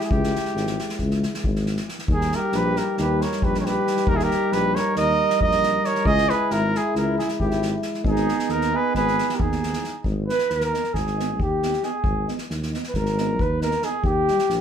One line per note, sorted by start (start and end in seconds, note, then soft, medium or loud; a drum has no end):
0.00 1.92 G#3 medium
0.00 1.91 E4 loud
0.00 snare soft
0.04 0.12 G#4 medium
0.11 0.35 C#2 loud
0.11 1.00 G4 medium
0.11 kick loud
0.24 snare soft
0.35 snare soft
0.45 snare soft
0.55 0.79 G#1 medium
0.55 snare soft
0.67 snare soft
0.79 snare soft
0.89 snare soft
0.98 1.25 C#2 medium
0.98 kick medium
0.98 snare soft
1.11 snare soft
1.23 snare soft
1.34 snare soft
1.44 1.80 G#1 medium
1.44 kick medium
1.56 snare soft
1.66 snare soft
1.77 snare soft
1.89 snare soft
1.99 snare soft
2.08 2.33 D#2 loud
2.08 6.08 G3 medium
2.08 6.02 D#4 medium
2.08 kick loud
2.13 2.38 D#4 medium
2.13 2.36 G#4 medium
2.21 snare soft
2.32 2.57 A#4 medium
2.32 snare soft
2.36 2.57 G4 medium
2.52 2.78 A#1 loud
2.52 2.79 B4 medium
2.52 snare soft
2.57 2.79 G4 medium
2.76 2.97 G4 medium
2.76 2.98 A#4 medium
2.76 snare soft
2.97 3.23 D#2 loud
2.97 3.22 G4 medium
2.97 3.24 B4 medium
2.97 snare soft
3.21 3.45 A#4 medium
3.21 3.46 C#5 medium
3.21 snare soft
3.32 snare soft
3.42 3.79 A#1 medium
3.42 3.55 G4 medium
3.42 3.59 B4 loud
3.42 kick medium
3.54 3.66 A#4 medium
3.54 snare soft
3.60 3.68 C#5 medium
3.64 4.07 G4 medium
3.64 4.10 B4 medium
3.64 snare soft
3.87 snare soft
3.97 snare soft
4.07 4.32 D#2 medium
4.07 4.16 G4 medium
4.07 4.18 A#4 loud
4.07 kick loud
4.14 4.25 E4 medium
4.14 4.25 G#4 medium
4.19 4.53 G4 loud
4.19 4.54 A#4 loud
4.19 snare soft
4.31 snare soft
4.52 4.77 A#1 medium
4.52 4.77 G4 medium
4.52 4.77 B4 medium
4.52 snare soft
4.75 4.96 A#4 medium
4.75 4.97 C#5 medium
4.75 snare soft
4.96 5.21 D#2 loud
4.96 5.38 A#4 medium
4.96 5.39 D#5 loud
4.96 snare soft
5.30 snare soft
5.41 5.77 A#1 medium
5.41 5.85 A#4 medium
5.41 5.87 D#5 loud
5.41 kick medium
5.51 snare soft
5.63 snare soft
5.84 6.09 A#4 medium
5.84 6.07 C#5 loud
5.84 snare soft
5.95 snare soft
6.04 6.30 C#2 loud
6.04 8.07 G#3 medium
6.04 8.06 E4 medium
6.04 6.30 G#4 medium
6.04 6.31 D#5 loud
6.04 kick loud
6.18 snare soft
6.29 6.54 G#4 medium
6.29 6.53 B4 medium
6.29 snare soft
6.50 6.76 G#1 loud
6.50 6.75 E4 medium
6.50 6.78 A#4 loud
6.50 snare soft
6.75 6.95 E4 medium
6.75 6.96 G#4 medium
6.75 snare soft
6.95 7.20 C#2 medium
6.95 7.18 E4 medium
6.95 7.17 A#4 medium
6.95 snare soft
7.18 7.30 E4 medium
7.18 7.28 G#4 medium
7.18 snare soft
7.29 snare soft
7.40 7.76 G#1 medium
7.40 7.77 E4 medium
7.40 7.76 G4 medium
7.40 kick medium
7.51 snare soft
7.62 snare soft
7.82 snare soft
7.94 snare soft
8.04 8.29 G#1 loud
8.04 9.88 B3 medium
8.04 9.87 D#4 medium
8.04 8.53 D#4 medium
8.04 8.52 G#4 medium
8.04 kick medium
8.16 snare soft
8.28 snare soft
8.39 snare soft
8.49 8.74 D#2 medium
8.49 8.77 A#4 medium
8.49 snare soft
8.53 8.75 D#4 medium
8.61 snare soft
8.74 8.95 G#4 medium
8.74 8.96 B4 loud
8.95 9.19 G#1 medium
8.95 9.36 G#4 medium
8.95 9.37 B4 loud
8.95 kick medium
8.95 snare soft
9.08 snare soft
9.18 snare soft
9.29 snare soft
9.34 9.42 G4 medium
9.34 9.41 A#4 medium
9.39 9.75 D#2 medium
9.39 10.05 D#4 medium
9.39 10.04 G#4 medium
9.39 kick medium
9.52 snare soft
9.63 snare soft
9.73 snare soft
9.84 snare soft
10.04 10.29 G#1 loud
10.04 kick medium
10.27 10.37 B3 soft
10.27 10.36 D#4 soft
10.27 10.50 B4 medium
10.27 snare soft
10.38 snare soft
10.50 10.74 D#2 medium
10.50 10.61 B4 medium
10.50 snare soft
10.61 10.95 A#4 medium
10.61 snare soft
10.72 10.82 B3 medium
10.72 10.81 D#4 medium
10.72 snare soft
10.84 snare soft
10.94 11.41 G#1 medium
10.94 11.39 G#4 medium
10.94 kick medium
10.94 snare soft
11.07 snare soft
11.17 11.27 B3 medium
11.17 11.26 D#4 medium
11.17 snare soft
11.39 11.75 D#2 medium
11.39 11.86 G4 medium
11.39 kick medium
11.62 11.71 B3 medium
11.62 11.70 D#4 soft
11.62 snare soft
11.73 snare soft
11.82 11.92 B3 medium
11.82 11.91 D#4 medium
11.82 12.28 G#4 medium
11.82 snare soft
12.03 12.28 G#1 medium
12.03 kick loud
12.27 12.37 B3 medium
12.27 12.36 D#4 soft
12.27 snare soft
12.38 snare soft
12.50 12.74 D#2 medium
12.50 snare soft
12.63 snare soft
12.71 12.82 B3 medium
12.71 12.80 D#4 medium
12.71 snare soft
12.83 snare soft
12.89 12.97 B4 soft
12.94 13.41 G#1 loud
12.94 13.43 A#4 medium
12.94 kick medium
12.94 snare soft
13.05 snare soft
13.18 13.27 B3 medium
13.18 13.27 D#4 medium
13.18 snare soft
13.39 13.75 D#2 loud
13.39 13.62 B4 medium
13.39 kick medium
13.61 13.71 B3 medium
13.61 13.69 D#4 medium
13.61 13.85 A#4 medium
13.61 snare soft
13.71 snare soft
13.82 13.93 B3 soft
13.82 13.91 D#4 medium
13.82 14.04 G#4 medium
13.82 snare soft
14.03 14.28 D#2 medium
14.03 14.61 G4 medium
14.03 kick medium
14.28 14.38 G3 medium
14.28 14.37 D#4 medium
14.28 snare soft
14.39 snare soft
14.49 14.61 A#1 medium
14.49 snare soft